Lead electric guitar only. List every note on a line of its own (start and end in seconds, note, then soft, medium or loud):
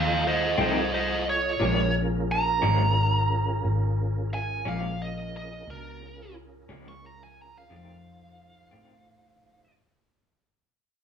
0.00 0.23 A4 medium
0.00 0.25 F5 medium
0.27 0.57 C5 medium
0.27 0.59 D#5 loud
0.61 0.91 C5 loud
0.61 0.93 D#5 medium
0.94 1.25 C5 medium
0.94 1.26 D#5 loud
1.29 1.94 C#5 loud
2.32 4.29 A#5 loud
4.34 4.66 G#5 loud
4.68 5.00 F5 loud
5.02 5.34 D#5 medium
5.37 5.68 D#5 medium
5.70 6.35 A#4 loud
6.88 7.04 C#6 loud
7.06 7.21 A#5 loud
7.24 7.38 G#5 loud
7.42 7.56 A#5 loud
7.58 7.72 F5 loud
7.76 9.73 F5 loud